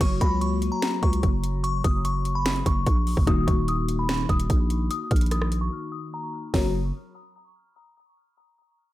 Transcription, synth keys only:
0.00 F#3 A#3 F#4 C#5
3.26 D#3 A#3 D#4 F#4
6.54 F#3 F#4 A#4 C#5

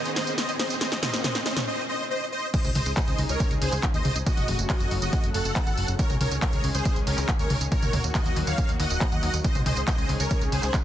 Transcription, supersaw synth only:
0.16 C5 D#5
0.38 C5 D#5
0.59 C5 D#5
0.81 C5 D#5
1.02 C5 D#5
1.24 C5 D#5
1.46 C5 D#5
1.67 C5 D#5
1.89 C5 D#5
2.10 C5 D#5
2.32 C5 D#5
2.54 C5 D#5
2.75 C5 D#5
2.97 C5 D#5
3.29 A#4 C#5
3.62 G#4 C5
3.94 C5 D#5
4.26 F#4 D#5
4.70 F#4 D#5
5.02 F#4 D#5
5.34 A4 F#5
5.99 A#4 C#5
6.20 A#4 C#5
6.42 A#4 C#5
6.74 G#4 C5
7.07 C#4 A#4
7.39 A#4 C#5
7.72 A#4 C#5
8.15 F#4 D#5
8.47 C#5 F5
8.80 D#5 F#5
9.44 C5 D#5
9.66 C5 D#5
9.88 C5 D#5
10.20 A#4 C#5
10.52 G#4 C5

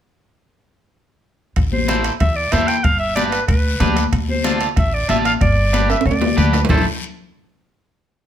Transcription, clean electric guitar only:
1.88 E4 A4 C5
2.52 E4 A4 C5
3.16 D4 G4 B4
3.80 D4 G4 B4
4.44 D4 F4 A4
5.08 D4 F4 A4
5.73 D4 G4 B4
6.37 D4 G4 B4
6.69 E4 A4 C5

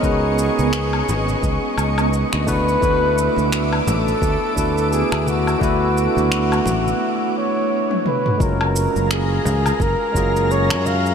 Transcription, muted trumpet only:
0.05 G#4
2.48 B4
3.88 A4
4.92 G#4
5.28 F#4
7.37 C#5
8.07 B4
8.41 A#4
9.13 G#4
9.82 A#4
10.52 C#5
10.87 F5

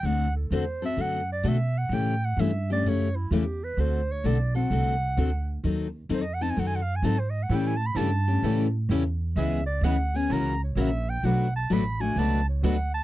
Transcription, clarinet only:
0.06 F#5
0.36 A4
0.53 C5
0.86 E5
1.01 F#5
1.32 D5
1.48 E5
1.78 F#5
1.94 G5
2.25 F#5
2.40 E5
2.72 D5
2.89 C#5
3.16 E4
3.32 G4
3.64 B4
3.80 C5
4.12 C#5
4.26 D5
4.56 F#5
6.14 C5
6.22 D#5
6.34 F#5
6.43 A5
6.51 G#5
6.59 F#5
6.67 G#5
6.76 F#5
6.82 F5
6.96 G#5
7.05 A5
7.19 C5
7.30 D#5
7.43 F#5
7.55 G5
7.67 G#5
7.77 A5
7.86 B5
7.97 A5
9.37 E5
9.66 D5
9.84 F#5
10.16 G#5
10.33 A#5
10.64 C#5
10.80 E5
11.10 G5
11.25 F#5
11.56 A5
11.73 B5
12.01 G#5
12.19 A5
12.49 C#5
12.64 F#5
12.94 A5

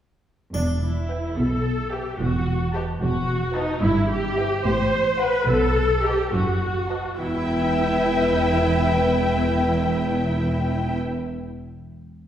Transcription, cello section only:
0.54 E2
1.37 B2
2.20 E2
3.02 E2
3.83 G2
4.65 A2
5.48 B2
6.33 F#2
7.19 E2

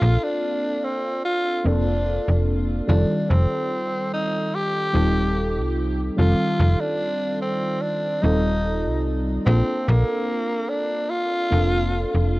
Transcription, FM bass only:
0.02 A#1
1.66 F1
2.28 F1
2.89 F1
3.30 F1
4.94 D#1
5.57 C2
6.18 F1
6.59 F1
8.24 D#1
8.86 C2
9.46 A#1
9.88 A#1
11.52 F1
12.15 F1

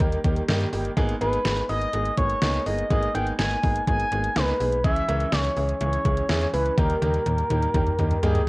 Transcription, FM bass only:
0.00 D#2
0.24 D#2
0.49 G2
0.73 G1
0.97 G#1
1.21 G#1
1.45 G#1
1.70 G#1
1.94 G#1
2.18 G#1
2.42 C#2
2.66 G1
2.91 G#1
3.15 G#1
3.39 G#1
3.63 G#1
3.87 G#1
4.12 G#1
4.36 C#2
4.60 B1
4.84 C#2
5.08 C#2
5.32 C#2
5.57 C#2
5.81 C#2
6.05 C#2
6.29 E2
6.53 C#2
6.78 D#2
7.02 D#2
7.26 D#2
7.50 D#2
7.74 D#2
7.99 D#2
8.23 G2

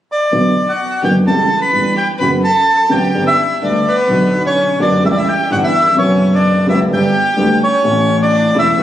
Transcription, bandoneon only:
0.12 D5
0.69 F#5
1.05 G5
1.27 A5
1.62 B5
1.97 G5
2.20 B5
2.44 A5
2.91 G5
3.27 E5
3.63 D5
3.88 B4
4.46 C#5
4.82 D5
5.06 E5
5.12 D5
5.17 E5
5.29 G5
5.52 F#5
5.64 E5
5.98 C#5
6.35 D5
6.69 E5
6.93 G5
7.63 C#5
8.23 D5
8.59 E5

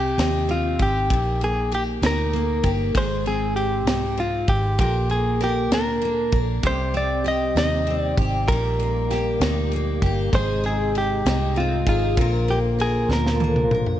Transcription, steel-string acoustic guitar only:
Already playing: C3 C4 G4
0.18 D#4
0.49 C4
0.80 G4
1.11 A#2
1.41 A#3
1.72 G4
2.02 D#4
2.33 A#3
2.64 G4
2.94 G#2 G#4
3.26 C4
3.87 D#4
4.17 C4
4.78 A#2 A#4
5.09 A#3
5.41 A#4
5.72 D4
6.02 A#3
6.33 A#4
6.63 C3 G4
6.94 C4
7.24 G4
7.56 D#4
7.87 C4
8.19 G4
8.49 A#2 G4
8.80 A#3
9.10 G4
9.41 D#4
9.73 A#3
10.03 G4
10.33 G#2 G#4
10.65 C4
11.26 D#4
11.57 C4
11.87 G#4
12.18 A#2 A#4
12.48 A#3
12.79 A#4
13.10 D4
13.40 A#3
13.71 A#4

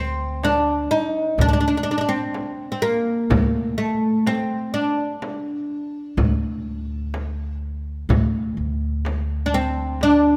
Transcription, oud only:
Already playing: C4
0.44 D4
0.91 D#4
1.41 D4
1.49 D4
1.53 D4
1.60 D4
1.68 D4
1.77 D4
1.83 D4
1.91 D4
1.98 D4
2.09 C4
2.72 C4
2.82 A#3
3.78 A3
4.27 C4
4.74 D4
9.46 D4
9.54 C4
10.03 D4

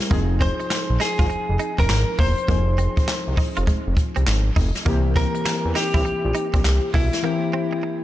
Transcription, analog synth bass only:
0.11 F1
0.90 A#1
1.19 G#1
1.30 F1
1.49 F1
1.79 F1
1.90 G#1
2.19 E1
2.49 F1
3.28 C2
3.57 F1
3.67 F1
3.87 F1
4.17 C2
4.27 G#1
4.57 F1
4.86 C2
5.65 E2
5.94 C2
6.06 A#1
6.25 A#1
6.54 A#1
6.65 C2
6.94 B1

